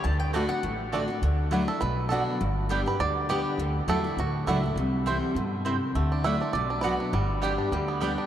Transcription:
0.04 upright bass D2, steel-string acoustic guitar D3, mandolin A5
0.20 mandolin G5
0.33 steel-string acoustic guitar D3 A3 D4 F#4, mandolin A3 F#4 D5 F#5 A5, five-string banjo A3 D4
0.49 steel-string acoustic guitar D4 F#4, mandolin F#5
0.63 upright bass A1, steel-string acoustic guitar A2
0.92 steel-string acoustic guitar D3 A3 D4 F#4, mandolin A3 F#4 D5 A5, five-string banjo A3 D4
1.08 steel-string acoustic guitar D4 F#4
1.22 upright bass D2, steel-string acoustic guitar D3
1.51 steel-string acoustic guitar F#3 A3 D4 E4, mandolin A3 E4 D5 F#5
1.68 steel-string acoustic guitar D4 E4, five-string banjo A4
1.81 upright bass B1, steel-string acoustic guitar B2, five-string banjo B4
2.09 steel-string acoustic guitar F#3 B3 D4 F#4, mandolin B3 F#4 D5 F#5, five-string banjo A4
2.41 upright bass G1, steel-string acoustic guitar G2
2.69 steel-string acoustic guitar G3 B3 D4 G4, mandolin B3 G4 D5 G5
2.86 steel-string acoustic guitar D4 G4, five-string banjo B4
2.99 upright bass D2, steel-string acoustic guitar D3, five-string banjo D5
3.29 steel-string acoustic guitar G3 B3 D4 G4, mandolin B3 G4 D5 G5, five-string banjo G4
3.58 upright bass D2, steel-string acoustic guitar D3
3.87 upright bass E2, steel-string acoustic guitar F#3 A3 D4 E4, mandolin A3 E4 D5 F#5, five-string banjo A4
4.04 steel-string acoustic guitar D4 E4
4.17 upright bass D2, steel-string acoustic guitar A2, five-string banjo F#4
4.46 upright bass C#2, steel-string acoustic guitar F#3 A3 D4 E4, mandolin A3 E4 D5 F#5, five-string banjo E4
4.63 steel-string acoustic guitar D4 E4
4.76 upright bass C2, steel-string acoustic guitar C3
5.06 steel-string acoustic guitar E3 G3 C4 E4, mandolin C4 E4 C5 G5
5.35 upright bass G2, steel-string acoustic guitar B2
5.65 steel-string acoustic guitar C3, mandolin C4 E4 C5 G5
5.95 upright bass D2, steel-string acoustic guitar D3, five-string banjo A3
6.12 five-string banjo D4
6.24 steel-string acoustic guitar F#3 A3 D4 E4, mandolin A3 E4 D5 F#5, five-string banjo E5
6.40 five-string banjo D4, steel-string acoustic guitar D4 E4
6.53 upright bass B1, steel-string acoustic guitar B2, five-string banjo D5
6.70 five-string banjo D4
6.81 steel-string acoustic guitar F#3 B3 D4, mandolin B3 F#4 D5 F#5, five-string banjo B4
6.85 steel-string acoustic guitar F#4
7.00 five-string banjo D4
7.13 upright bass G1, steel-string acoustic guitar G2, five-string banjo G3
7.42 steel-string acoustic guitar G3 B3 D4 G4, mandolin B3 G4 D5 G5, five-string banjo G4
7.58 five-string banjo D4
7.71 upright bass D2, steel-string acoustic guitar D3, five-string banjo G3
7.88 five-string banjo B3
8.01 steel-string acoustic guitar G3 B3 D4 G4, five-string banjo G3, mandolin B3 G4 D5 G5
8.18 five-string banjo D4

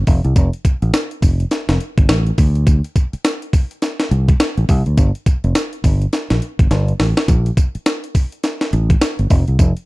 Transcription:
0.07 fingered electric bass F1, kick, open hi-hat, tambourine
0.24 fingered electric bass C2, closed hi-hat
0.36 fingered electric bass F1, kick, closed hi-hat, tambourine
0.53 closed hi-hat
0.65 kick, closed hi-hat, tambourine
0.82 fingered electric bass A1, closed hi-hat
0.93 snare, closed hi-hat, tambourine
1.11 closed hi-hat
1.22 fingered electric bass F1, kick, open hi-hat, tambourine
1.40 closed hi-hat
1.51 snare, closed hi-hat, tambourine
1.69 fingered electric bass F1, snare, closed hi-hat
1.80 closed hi-hat
1.98 fingered electric bass G1, kick, closed hi-hat
2.09 fingered electric bass A1, snare, closed hi-hat, tambourine
2.27 closed hi-hat
2.38 fingered electric bass D2, kick, open hi-hat, tambourine
2.55 closed hi-hat
2.67 kick, closed hi-hat, tambourine
2.84 closed hi-hat
2.96 kick, closed hi-hat, tambourine
3.13 muted fingered electric bass stroke, closed hi-hat
3.24 snare, closed hi-hat, tambourine
3.42 closed hi-hat
3.53 kick, open hi-hat, tambourine
3.71 closed hi-hat
3.82 snare, closed hi-hat, tambourine
4.00 snare, closed hi-hat
4.11 fingered electric bass C2, closed hi-hat
4.28 kick, closed hi-hat
4.40 snare, closed hi-hat, tambourine
4.57 fingered electric bass A1, closed hi-hat
4.69 fingered electric bass C2, kick, open hi-hat, tambourine
4.86 fingered electric bass D2, closed hi-hat
4.97 fingered electric bass G1, kick, closed hi-hat, tambourine
5.15 closed hi-hat
5.26 kick, closed hi-hat, tambourine
5.44 fingered electric bass F1, closed hi-hat
5.55 snare, closed hi-hat, tambourine
5.73 closed hi-hat
5.84 fingered electric bass G1, kick, open hi-hat, tambourine
6.02 closed hi-hat
6.13 snare, closed hi-hat, tambourine
6.30 fingered electric bass A#1, snare, closed hi-hat
6.42 closed hi-hat
6.59 fingered electric bass G1, kick, closed hi-hat
6.71 fingered electric bass G1, snare, closed hi-hat
6.88 closed hi-hat
7.00 fingered electric bass A1, snare, open hi-hat
7.17 snare, closed hi-hat
7.28 fingered electric bass A#1, kick, closed hi-hat, tambourine
7.46 closed hi-hat
7.57 kick, closed hi-hat, tambourine
7.75 muted fingered electric bass stroke, closed hi-hat
7.86 snare, closed hi-hat, tambourine
8.04 closed hi-hat
8.15 kick, open hi-hat, tambourine
8.32 closed hi-hat
8.43 snare, closed hi-hat, tambourine
8.61 snare, closed hi-hat
8.73 fingered electric bass A1, closed hi-hat
8.90 kick, closed hi-hat
9.01 snare, closed hi-hat, tambourine
9.19 fingered electric bass G1, closed hi-hat
9.30 fingered electric bass F1, kick, open hi-hat, tambourine
9.48 fingered electric bass C2, closed hi-hat
9.59 fingered electric bass F1, kick, closed hi-hat, tambourine
9.77 closed hi-hat

